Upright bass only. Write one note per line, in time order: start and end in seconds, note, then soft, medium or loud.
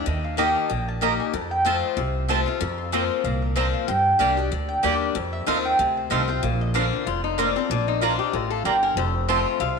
0.07 0.54 D#2 loud
0.70 1.17 A#1 medium
1.34 1.81 F2 loud
1.97 2.44 C2 medium
2.61 3.08 F2 loud
3.24 3.71 C2 medium
3.88 4.12 G2 medium
4.20 4.47 C2 medium
4.51 4.79 D2 medium
4.84 5.11 D#2 medium
5.15 5.39 F2 medium
5.47 5.74 D#2 medium
5.79 6.06 D2 medium
6.11 6.38 C2 medium
6.43 6.90 A#1 loud
7.07 7.53 F1 medium
7.70 8.17 A#1 loud
8.33 8.60 A1 medium
8.64 8.92 G1 medium
8.96 9.43 F1 medium
9.60 9.79 C2 medium